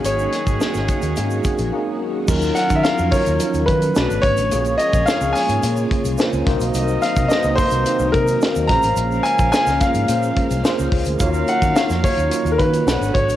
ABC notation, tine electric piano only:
X:1
M:4/4
L:1/16
Q:1/4=108
K:Ebdor
V:1 name="Tine electric piano"
[B,DEGA]3 z [B,DEGA]4 [B,CDEGA]4 [B,DEGA]4 | [G,DEFB]4 [G,DEFB]4 [F,G,DEFB]4 [=A,D=D^F=A=B]4 | [B,CDFAd]4 [B,CDFAd]4 [B,DFAd]4 [B,DFAc]2 [B,CEGc]2- | [B,CEGc]3 z [B,CEG_c=c]4 [B,CEGc]4 [B,CEGe]2 [B,DFAc]2- |
[B,DFAc]3 z [B,DFAc]4 [B,DFAc]4 [B,DFAc]4 | [B,EFGd]4 [B,EFGd]4 [B,EFGd]4 [=B,=D^F=Ac_d]4 |]